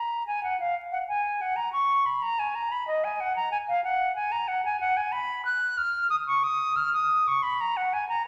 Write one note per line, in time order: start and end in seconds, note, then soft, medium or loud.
0.00 0.26 A#5 medium
0.27 0.43 G#5 medium
0.44 0.59 F#5 medium
0.60 0.75 F5 medium
0.92 0.98 F#5 medium
1.09 1.43 G#5 medium
1.41 1.58 F#5 medium
1.56 1.72 A#5 medium
1.73 2.07 C#6 medium
2.06 2.24 B5 medium
2.22 2.41 A#5 medium
2.39 2.57 G#5 medium
2.55 2.73 A#5 medium
2.72 2.87 B5 medium
2.87 3.06 D#5 medium
3.04 3.22 G#5 medium
3.20 3.36 F#5 medium
3.36 3.51 A#5 medium
3.52 3.58 G#5 medium
3.69 3.84 F5 medium
3.84 4.15 F#5 medium
4.16 4.33 G#5 medium
4.32 4.49 A#5 medium
4.48 4.64 F#5 medium
4.65 4.80 G#5 medium
4.80 4.98 F#5 medium
4.97 5.14 G#5 medium
5.12 5.45 B5 medium
5.45 5.79 F#6 medium
5.78 6.09 F6 medium
6.10 6.16 D#6 medium
6.27 6.45 C#6 medium
6.44 6.78 D#6 medium
6.76 6.93 F6 medium
6.94 7.29 D#6 medium
7.28 7.44 C#6 medium
7.43 7.62 B5 medium
7.61 7.78 A#5 medium
7.77 7.95 F#5 medium
7.93 8.08 G#5 medium
8.09 8.25 A#5 medium